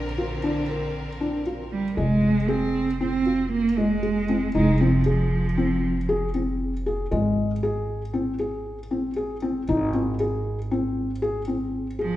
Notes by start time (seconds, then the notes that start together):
Already playing: A#1 D3 C4 A#4
0.18 F4
0.43 D4
0.69 A#4
1.21 D4
1.46 F4
1.71 G3
1.97 F1 G#3
2.48 C4 G#4
3.00 C4
3.26 F4
3.52 A#3
3.78 G#3
4.03 G#4
4.29 C4
4.55 F1 G#3 D#4
4.81 F3 C4
5.06 G#4
5.57 C4
6.09 G#4
6.34 C4
6.86 G#4
7.11 G#1 G#3
7.63 G#4
8.13 C4
8.39 G#4
8.91 C4
9.16 G#4
9.42 C4
9.69 G#1 D#4
9.94 C4
10.20 G#4
10.71 C4
11.22 G#4
11.48 C4
11.99 F3 G#4